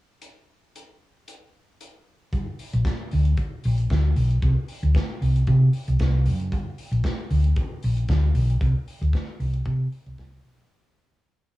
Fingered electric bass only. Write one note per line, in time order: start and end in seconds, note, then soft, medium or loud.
2.33 2.44 G1 medium
2.73 2.83 A#1 medium
3.13 3.33 D2 medium
3.65 3.85 A#1 medium
3.91 4.11 D2 medium
4.16 4.36 B1 medium
4.43 4.53 C2 loud
4.83 4.92 D2 medium
5.21 5.41 C2 medium
5.48 5.68 C3 loud
5.88 5.97 C2 medium
6.00 6.27 C2 medium
6.26 6.53 F#1 loud
6.53 6.63 G1 medium
6.92 7.01 A#1 medium
7.31 7.51 D2 medium
7.84 8.04 A#1 medium
8.09 8.29 D2 medium
8.35 8.55 B1 medium
8.62 8.72 C2 medium
9.01 9.11 D2 medium
9.40 9.60 C2 medium
9.66 9.86 C3 loud
10.06 10.15 C2 medium
10.19 10.39 C2 loud
10.44 10.64 B1 loud